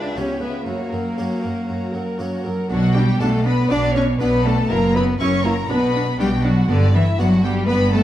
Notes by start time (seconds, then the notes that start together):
Already playing: C#2 D4 B4 E5 G5
0.16 C#2 B3 C#4 G4 C#5 E5
0.41 C#2 B3 B4 E5 G5
0.66 F#2 A#3 F#4 C#5 A#5
0.91 F#2 A#4 F#5
1.17 F#2 A#3 C#4 F#4 C#5 A#5
1.42 F#2 A#4 F#5
1.68 F#2 F#4 C#5 A#5
1.93 F#2 A#4 F#5
2.19 F#2 A#3 C#4 F#4 C#5 A#5
2.44 F#2 A#4 F#5
2.69 B1 B2 F#3 D4 F#4 F#5
2.95 G3 D4 G4 G5
3.20 B1 B2 A3 B3 D4 A4 A5
3.45 B3 D4 B4 B5
3.70 B1 B2 B3 D4 D5 D6
3.94 C#4 D4 C#5 C#6
4.19 B1 B2 B3 D4 B4 B5
4.44 A3 D4 A4 A5
4.69 F#1 F#2 A#3 E4 A#4 A#5
4.95 B3 E4 B4 B5
5.20 F#1 F#2 C#4 E4 C#5 C#6
5.44 A#3 E4 A#4 A#5
5.69 B1 B2 B3 D4 B4 B5
5.95 D4
6.19 B1 B2 G3 B3 D4 G4 G5
6.44 F#3 D4 F#4 F#5
6.69 G1 G2 D3 B3 D4 D5
6.94 E3 B3 E4 E5
7.18 G1 G2 F#3 B3 D4 F#4 F#5
7.43 G3 B3 G4 G5
7.68 G1 G2 B3 D4 B4 B5
7.93 A3 B3 A4 A5